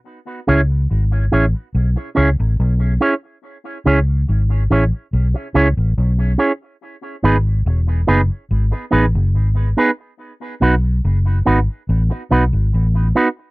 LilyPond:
<<
  \new Staff \with { instrumentName = "Clean electric guitar" } { \time 4/4 \key cis \minor \tempo 4 = 71 r8 <cis' e' gis' cis''>8 r8 <cis' e' gis' cis''>8 r8 <cis' e' gis' cis''>8 r8 <cis' e' gis' cis''>8 | r8 <cis' e' gis' cis''>8 r8 <cis' e' gis' cis''>8 r8 <cis' e' gis' cis''>8 r8 <cis' e' gis' cis''>8 | r8 <b dis' gis' b'>8 r8 <b dis' gis' b'>8 r8 <b dis' gis' b'>8 r8 <b dis' gis' b'>8 | r8 <b dis' fis' b'>8 r8 <b dis' fis' b'>8 r8 <b dis' fis' b'>8 r8 <b dis' fis' b'>8 | }
  \new Staff \with { instrumentName = "Fingered electric bass" } { \clef bass \time 4/4 \key cis \minor r8 cis,8 gis,,8 a,,16 r16 b,,16 r16 cis,16 a,,16 b,,8 r8 | r8 cis,8 gis,,8 a,,16 r16 b,,16 r16 cis,16 a,,16 b,,8 r8 | r8 gis,,8 e,,8 fis,,16 r16 gis,,16 r16 a,,16 fis,,16 gis,,8 r8 | r8 b,,8 fis,,8 gis,,16 r16 a,,16 r16 b,,16 gis,,16 a,,8 r8 | }
>>